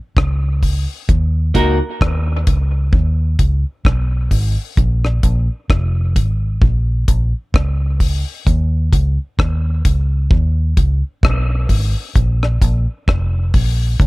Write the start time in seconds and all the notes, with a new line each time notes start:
0.17 C#2, kick, cross-stick
0.63 kick, open hi-hat
1.09 D#2, kick, hi-hat pedal
1.54 C#2 A#3 D#4 F#4 A#4, kick, closed hi-hat
2.01 D#2, kick, cross-stick
2.47 C#2, kick, closed hi-hat
2.93 D#2, kick
3.39 C#2, kick, closed hi-hat
3.85 B1, kick, cross-stick
4.31 G#1, kick, open hi-hat
4.77 A#1, kick, hi-hat pedal
5.05 cross-stick
5.23 A#1, kick, closed hi-hat
5.70 F1, kick, cross-stick
6.16 G#1, kick, closed hi-hat
6.62 A#1, kick
7.08 A#1, kick, closed hi-hat
7.54 C#2, kick, cross-stick
8.00 kick, open hi-hat
8.47 D#2, kick, hi-hat pedal
8.93 C#2, kick, closed hi-hat
9.39 D#2, kick, cross-stick
9.85 C#2, kick, closed hi-hat
10.31 D#2, kick
10.77 C#2, kick, closed hi-hat
11.23 B1, kick, cross-stick
11.69 G#1, kick, open hi-hat
12.15 A#1, kick, hi-hat pedal
12.43 cross-stick
12.62 A#1, kick, closed hi-hat
13.08 F1, kick, cross-stick
13.54 A#1, kick, open hi-hat
14.00 C#2, kick, hi-hat pedal